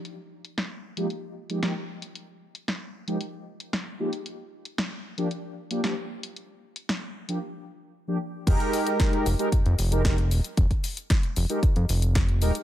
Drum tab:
CC |----------------|----------------|----------------|----------------|
HH |x--xx--xx--xx--x|x--xx--xx--xx--x|x--xx--xx--xx--x|x--xx--x--------|
SH |----------------|----------------|----------------|----------------|
SD |----o-------o---|----o-------o---|----o-------o---|----o-----------|
BD |----------------|----------------|----------------|----------------|

CC |x---------------|----------------|
HH |xxoxxxoxxxoxxxox|xxoxxxoxxxoxxxox|
SH |x-xxx-xxx-xxx-xx|x-xxx-xxx-xxx-xx|
SD |----o-------o---|----o-------o---|
BD |o---o---o---o---|oo--o---o---o---|